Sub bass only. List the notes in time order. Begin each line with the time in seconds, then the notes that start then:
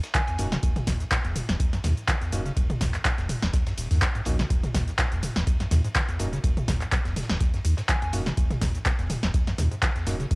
0.39 D#1
0.63 D#1
0.87 D#1
1.25 D#1
1.49 D#1
1.84 D#2
2.33 D#1
2.57 D#1
2.81 D#1
3.18 D#1
3.42 D#1
3.78 D#1
3.91 D#2
4.26 A#1
4.50 D#1
4.74 D#1
5.12 D#1
5.36 D#1
5.71 D#2
6.20 D#1
6.44 D#1
6.68 D#1
7.05 D#1
7.30 D#1
7.65 D#2
8.13 D#1
8.37 D#1
8.61 D#1
8.99 D#1
9.23 D#1
9.58 D#2
10.07 D#1
10.31 D#1